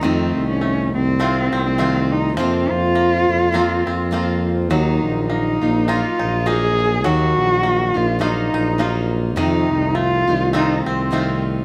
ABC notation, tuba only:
X:1
M:4/4
L:1/8
Q:"Swing" 1/4=103
K:Ebdor
V:1 name="Tuba" clef=bass
F,, C,,2 C,,2 C,,2 z | F,, F,,2 F,,2 F,,3 | E,, B,,,2 B,,,2 B,,,2 z | E,, B,,,2 B,,,2 B,,,3 |
F,, C,,2 C,,2 C,,2 z |]